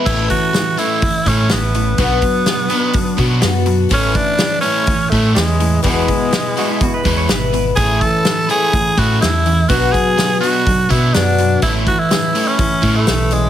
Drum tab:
CC |x-------|--------|--------|--------|
HH |-ooooooo|oooooooo|oooooooo|oooooooo|
SD |--o---o-|--o---o-|--o---o-|--o---o-|
BD |oo--oo--|oo--oo--|oo--oo--|oo--oo--|

CC |--------|--------|--------|
HH |oooooooo|oooooooo|oooooooo|
SD |--o---o-|--o---o-|--o---o-|
BD |oo--oo--|oo--oo--|oo--oo--|